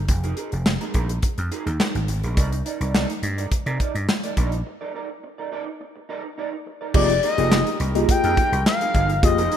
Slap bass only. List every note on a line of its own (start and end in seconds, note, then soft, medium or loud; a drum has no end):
0.09 0.32 F1 loud
0.53 0.76 F1 medium
0.94 1.18 A#1 medium
1.38 1.49 F2 medium
1.66 1.77 D#2 medium
1.95 2.06 G#1 medium
2.08 2.21 G#1 medium
2.23 2.35 A#1 medium
2.37 2.61 C2 medium
2.81 3.04 C2 medium
3.23 3.46 G2 medium
3.52 muted slap bass stroke soft
3.66 3.77 C3 medium
3.95 4.06 G2 medium
4.37 4.61 A#1 medium
6.94 7.18 F1 loud
7.38 7.61 F1 medium
7.80 8.03 C2 medium
8.24 8.35 F2 loud
8.52 8.63 C2 medium
8.95 9.18 G1 loud
9.23 9.46 F1 loud